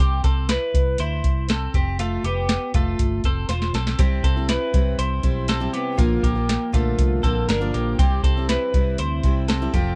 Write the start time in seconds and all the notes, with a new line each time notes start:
0.00 C2 C4 G4
0.24 C2 C4 A4, kick, closed hi-hat
0.49 E4 B4, snare, closed hi-hat
0.74 C2, kick, closed hi-hat
0.98 D2 E4 C5, closed hi-hat
1.24 C2, kick, closed hi-hat
1.49 C4 A4, snare, closed hi-hat
1.74 F1 C4 G4, kick, closed hi-hat
1.99 A3 F4, closed hi-hat
2.24 F1 B3 G4, closed hi-hat
2.49 snare, closed hi-hat
2.74 F1 A3 F4, kick, closed hi-hat
2.99 G1, kick, closed hi-hat
3.24 F1 C4 A4, kick, closed hi-hat
3.49 E1 F4 C5, snare, closed hi-hat
3.62 snare
3.73 B1 C4 A4, snare, closed hi-hat
3.87 snare
3.98 C2 C3 G3 C4 E4 G4, kick, closed hi-hat
4.24 C2 C4 A4, kick, closed hi-hat
4.36 G3 C4 E4
4.49 E4 B4, snare, closed hi-hat
4.73 C2 C3 G3 C4 E4, kick, closed hi-hat
4.98 C2 E4 C5, closed hi-hat
5.23 B1 G3 C4 E4, kick, closed hi-hat
5.48 C4 A4, snare, closed hi-hat
5.60 C3 G3 C4 E4
5.73 B3 G4, closed hi-hat
5.97 A#1 D3 F3 A#3 F4, kick, closed hi-hat
6.23 A#1 A#3 G4, kick, closed hi-hat
6.35 F3 A#3 F4
6.49 snare, closed hi-hat
6.73 A#1 D3 F3 A3 A#3 F4, kick, closed hi-hat
6.99 C2, kick, closed hi-hat
7.23 A#1 D3 F3 A#3 C4 F4 A4, kick, closed hi-hat
7.48 G1 D4 A#4, snare, closed hi-hat
7.61 A#2 D3 F3 A#3 F4
7.74 A#1 A#3 G4, closed hi-hat
7.99 C2 C3 G3 C4 E4 G4, kick, closed hi-hat
8.23 C2 C4 A4, kick, closed hi-hat
8.37 G3 C4 E4
8.49 E4 B4, snare, closed hi-hat
8.74 C2 C3 G3 C4 E4, kick, closed hi-hat
8.98 D2 E4 C5, closed hi-hat
9.23 C2 C3 G3 C4 E4, kick, closed hi-hat
9.48 C4 A4, snare, closed hi-hat
9.62 C3 G3 C4 E4
9.73 F1 F3 A3 C4 F4 G4, kick, closed hi-hat